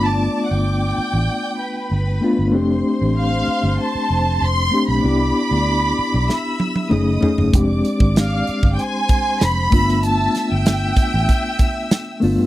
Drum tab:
HH |----------------|----------------|----------------|x-x-x-x-x-x-x-o-|
SD |----------------|----------------|--------o-------|----o-------o--o|
T1 |----------------|----------------|----------oo----|----------------|
T2 |----------------|----------------|------------o---|----------------|
FT |----------------|----------------|--------------oo|----------------|
BD |----------------|----------------|----------------|o--o---o--o---o-|

HH |x-x-x-x-x-x-x-o-|
SD |--o-o-------o---|
T1 |----------------|
T2 |----------------|
FT |----------------|
BD |------o-o-o-----|